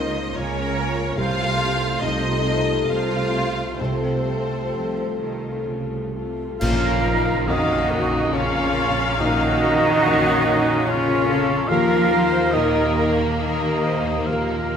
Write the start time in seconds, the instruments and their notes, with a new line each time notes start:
Already playing: double bass section C#2, felt piano C#2 A#3, cello section C#3, harp C#3 A#3 C#4 F4 A#4 F5, viola section A#3 F4, french horn section A#3 F4, violin section D#4 D#5, flute section C5
0.17 harp A#3
0.35 double bass section C#2, cello section C#3, violin section C#4 C#5, harp C#4, flute section A#4
0.58 harp A#3
0.77 viola section A#3 F4, harp C#4
0.99 harp A#3
1.16 felt piano C2, double bass section C2, cello section C3, french horn section A3 F4, viola section A3 F4, violin section F4 F5, flute section C5
1.41 harp A3
1.58 viola section A3 F4, harp C4
2.01 double bass section C2, cello section C3, felt piano C3, violin section D#4 D#5, harp A4, flute section C5
2.25 harp C5
2.45 viola section A3 F4, harp A4
2.70 harp C4
2.88 double bass section C2, cello section C3, harp A3, violin section F4 F5, flute section C5
3.13 harp C4
3.33 viola section A3 F4, harp A3
3.57 harp C4
3.78 double bass section C2, felt piano C2, cello section C3, violin section C4 C5, flute section A4
4.04 harp A3
4.27 viola section A3 F4, harp C4
4.74 double bass section C2, cello section F3, felt piano C4, harp A4
4.99 harp C5
5.21 cello section D#3, viola section A3 F4, harp A4
5.45 harp C4
5.68 double bass section C2, cello section C#3, harp A3
5.92 harp C4
6.15 cello section C3, viola section A3 F4, harp A3
6.38 harp C4
6.60 double bass section A#1, felt piano A#1, harp A#2, cello section F3, violin section A#3 C#4, viola section C#4, cor anglais F4 F5, french horn section F4, flute section A#4, concert bass drum, crash
6.84 harp C#3
7.05 harp C#4, viola section D#4
7.47 felt piano F2, cello section D#3, cor anglais D#4 D#5, french horn section D#4, flute section F#4, harp A#4, viola section F5
7.70 harp C#5
7.91 viola section F#4, harp A#4
8.13 harp C#4
8.33 cello section C#3, cor anglais C#4 C#5, french horn section C#4, flute section F4, viola section F5
8.55 harp C#4
8.99 harp C#4
9.19 felt piano A#1, harp A#2, cello section D#3, cor anglais D#4 D#5, french horn section D#4, flute section F#4
9.65 harp C#4
10.06 felt piano C#4, viola section D#4, harp A#4
10.27 harp C#5
10.48 viola section C#4, harp A#4
10.70 harp C#4
10.87 cello section C#3, cor anglais C#4 C#5, french horn section C#4, flute section F4, viola section F4
11.10 harp C#4
11.28 viola section A4
11.67 double bass section D#2, felt piano D#2, harp D#3, cello section F3, violin section A#3, french horn section F4, cor anglais F4 F5, flute section A#4, viola section A#4
11.91 harp D#4
12.11 harp A#3, viola section C5
12.34 harp F5
12.51 felt piano A#2, cello section D#3, cor anglais D#4 D#5, french horn section D#4, flute section A#4, viola section A#4, harp A#4
12.96 viola section A#4, harp A#4
13.19 harp A#3
13.37 cello section D#3, cor anglais D#4 D#5, french horn section D#4, flute section A#4, viola section A#4
13.42 harp D#4
13.62 harp A#3
13.84 harp D#4, viola section C5
14.07 harp A#3
14.26 felt piano D#2, harp D#3, cello section F3, cor anglais F4 F5, french horn section F4, flute section A#4, viola section A#4
14.52 harp D#4